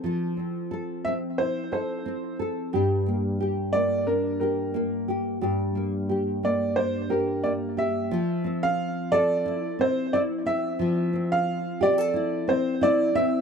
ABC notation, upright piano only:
X:1
M:4/4
L:1/16
Q:1/4=89
K:F
V:1 name="Upright piano"
z6 e2 c2 c4 z2 | z6 d2 B2 B4 z2 | z6 d2 c2 B2 d2 e2- | e3 f3 d4 c2 d2 e2- |
e3 f3 d4 c2 d2 e2 |]